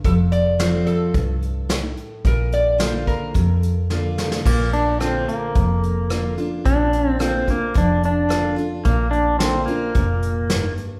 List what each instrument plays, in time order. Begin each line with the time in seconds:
0.04 fingered electric bass F1, steel-string acoustic guitar F2, resonator guitar played with a steel bar A4, kick, closed hi-hat
0.32 resonator guitar played with a steel bar D5, closed hi-hat
0.59 steel-string acoustic guitar F3 A3 C4 F4, resonator guitar played with a steel bar C5, snare, closed hi-hat
0.87 resonator guitar played with a steel bar A4, closed hi-hat
1.14 fingered electric bass C2, steel-string acoustic guitar G2, kick, closed hi-hat
1.42 closed hi-hat
1.69 steel-string acoustic guitar A2, snare, closed hi-hat
1.97 closed hi-hat
2.25 fingered electric bass A#1, steel-string acoustic guitar A#2, resonator guitar played with a steel bar A#4, kick, closed hi-hat
2.52 resonator guitar played with a steel bar D5, closed hi-hat
2.78 steel-string acoustic guitar D3 A#3 D4 F4, resonator guitar played with a steel bar C5, snare, closed hi-hat
3.07 resonator guitar played with a steel bar A#4, kick, closed hi-hat
3.34 steel-string acoustic guitar F2, fingered electric bass F2, kick, closed hi-hat
3.63 closed hi-hat
3.90 steel-string acoustic guitar D3 A#3 D4 F4, snare
4.18 snare
4.32 snare
4.46 fingered electric bass A#1, steel-string acoustic guitar A#2, pedal steel guitar A#3, kick, crash
4.73 pedal steel guitar D4, closed hi-hat
5.00 steel-string acoustic guitar D3 A#3 D4 F4, pedal steel guitar C4, cross-stick, closed hi-hat
5.28 pedal steel guitar A#3, closed hi-hat
5.55 fingered electric bass F1, steel-string acoustic guitar F2, kick, closed hi-hat
5.83 closed hi-hat
6.10 steel-string acoustic guitar D3 A#3 D4 F4, cross-stick, closed hi-hat
6.38 steel-string acoustic guitar D4 F4, closed hi-hat
6.65 fingered electric bass A#1, steel-string acoustic guitar A#2, pedal steel guitar D4, kick, closed hi-hat
6.93 closed hi-hat
7.10 pedal steel guitar C4
7.19 steel-string acoustic guitar D3 A#3 D4 F4, pedal steel guitar C4, cross-stick, closed hi-hat
7.47 pedal steel guitar A#3, steel-string acoustic guitar D4 F4, kick, closed hi-hat
7.74 fingered electric bass F1, steel-string acoustic guitar F2, pedal steel guitar D4, kick, closed hi-hat
8.03 pedal steel guitar D4, closed hi-hat
8.29 steel-string acoustic guitar D3 A#3 D4 F4, cross-stick, closed hi-hat
8.56 steel-string acoustic guitar D4 F4, closed hi-hat
8.85 fingered electric bass A#1, steel-string acoustic guitar A#2, pedal steel guitar A#3, kick, closed hi-hat
9.11 pedal steel guitar D4, closed hi-hat
9.39 steel-string acoustic guitar D3 A#3 D4 F4, pedal steel guitar C4, snare, closed hi-hat
9.66 pedal steel guitar A#3, steel-string acoustic guitar F4, closed hi-hat
9.70 steel-string acoustic guitar D4
9.95 fingered electric bass F1, steel-string acoustic guitar A#2, kick, closed hi-hat
10.23 closed hi-hat
10.50 steel-string acoustic guitar G2, snare, closed hi-hat
10.77 closed hi-hat